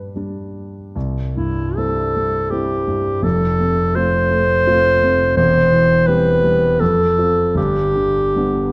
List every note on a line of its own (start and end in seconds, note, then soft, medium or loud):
0.00 0.97 G2 soft
0.00 0.12 G3 soft
0.00 0.12 D4 soft
0.00 0.15 B4 medium
0.16 0.91 G3 soft
0.16 0.91 D4 soft
0.96 3.20 C2 medium
1.36 2.01 G2 soft
1.36 1.78 E4 medium
1.77 2.12 G3 soft
1.77 2.12 C4 soft
1.77 2.12 E4 soft
1.77 2.52 A4 medium
2.16 2.50 G3 soft
2.50 2.84 G3 soft
2.50 2.84 C4 soft
2.50 2.84 E4 soft
2.50 3.25 G4 medium
2.87 3.23 G2 soft
3.22 5.33 F1 medium
3.22 5.34 F2 medium
3.22 3.97 A4 medium
3.60 4.17 C3 soft
3.95 4.27 A3 soft
3.95 4.27 C4 soft
3.95 4.28 F4 medium
3.95 5.36 C5 loud
4.31 4.65 A3 medium
4.66 4.99 A3 medium
4.66 4.99 C4 soft
4.66 4.99 F4 medium
5.02 5.38 C3 soft
5.36 6.76 E1 medium
5.36 6.76 E2 medium
5.36 6.08 C5 medium
5.72 6.29 E3 medium
6.07 6.40 G3 soft
6.07 6.40 C4 medium
6.07 6.41 G4 medium
6.07 6.81 B4 loud
6.43 6.80 G3 medium
6.80 7.54 F2 medium
6.80 7.56 A4 medium
7.18 7.53 C4 soft
7.18 7.53 F4 soft
7.54 8.72 G1 medium
7.54 8.72 G2 medium
7.54 8.72 G4 medium
7.96 8.59 D3 soft
8.36 8.71 G3 soft
8.36 8.72 B3 soft
8.36 8.72 D4 soft